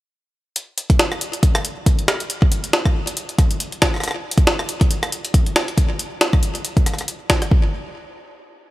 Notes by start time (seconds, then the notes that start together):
0.56 closed hi-hat
0.78 closed hi-hat
0.90 kick, closed hi-hat
0.99 snare, closed hi-hat
1.12 cross-stick
1.21 closed hi-hat
1.33 closed hi-hat
1.43 kick, closed hi-hat
1.55 cross-stick, closed hi-hat
1.65 closed hi-hat
1.86 kick, closed hi-hat
1.99 closed hi-hat
2.08 cross-stick, snare, closed hi-hat
2.20 closed hi-hat
2.30 closed hi-hat
2.42 kick
2.52 closed hi-hat
2.64 closed hi-hat
2.73 snare
2.85 kick, cross-stick
3.07 closed hi-hat
3.17 closed hi-hat
3.29 closed hi-hat
3.38 kick, cross-stick, closed hi-hat
3.51 closed hi-hat
3.60 closed hi-hat
3.72 closed hi-hat
3.82 kick, cross-stick, snare, closed hi-hat
3.94 cross-stick
3.96 cross-stick
4.00 cross-stick
4.04 cross-stick, closed hi-hat
4.08 cross-stick
4.11 cross-stick
4.31 closed hi-hat
4.38 kick, closed hi-hat
4.47 snare
4.59 cross-stick
4.69 closed hi-hat
4.81 kick, closed hi-hat
4.91 closed hi-hat
5.03 cross-stick, closed hi-hat
5.12 closed hi-hat
5.25 closed hi-hat
5.34 kick, closed hi-hat
5.46 closed hi-hat
5.56 cross-stick, snare, closed hi-hat
5.68 closed hi-hat
5.78 kick, closed hi-hat
5.99 closed hi-hat
6.21 snare, closed hi-hat
6.33 kick, cross-stick
6.43 closed hi-hat
6.55 closed hi-hat
6.65 closed hi-hat
6.77 kick, closed hi-hat
6.86 cross-stick, closed hi-hat
6.94 cross-stick
6.98 cross-stick, closed hi-hat
7.08 closed hi-hat
7.30 kick, cross-stick, snare, closed hi-hat
7.42 cross-stick, closed hi-hat
7.51 kick